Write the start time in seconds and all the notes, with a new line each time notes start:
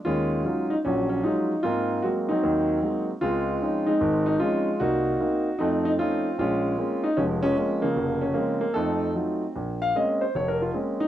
0.05 D#2 D#3 G#3 C#4 F4
0.45 F#3 G#3 C#4 D#4 F4
0.70 D#4
0.84 A#1 F3 F#3 C#4
1.09 C#4
1.23 F#3 G#3 C#4 D#4 F4
1.63 G#2 A#3 C4 F4
2.02 F#3 G#3 A#3 C4 F#4
2.29 F#3 C4 D#4
2.43 D#2 D#3
2.82 F#3 G#3 A#3 C4
3.21 C#2 G#3 C4 F4
3.62 F3 C4 C#4 D#4
3.87 G#3 C4 D#4
4.01 G#1
4.26 D#4
4.40 F3 G#3 C4 C#4 D#4 F4
4.80 C2 A#3 D#4 F#4
5.20 A#3 C4 D#4
5.59 F2 A3 C4 D#4
5.85 D#4
5.99 F3 A3 C4 C#4 D#4 F4
6.38 A#1 G#3 C#4 F4
6.78 G#3 A#3 C4 C#4
7.04 D#4
7.17 F1 F3 G#3 C#4
7.42 F3 G#3 C#4
7.57 G#3 A#3 C4 C#4
7.82 C#3 F3 A#3
7.96 F1
8.22 C#4
8.34 G#3 A#3 C4 C#4
8.61 A#3
8.74 F2 A3 C4 D#4 A4
9.15 F#3 A3 D#4 F4
9.56 A#1
9.82 F5
9.95 G#3 A#3 C4 C#4 D#5
10.21 C5
10.35 F1 C#5
10.48 A#4
10.62 F4
10.74 G#3 A#3 C4 C#4
11.00 D#4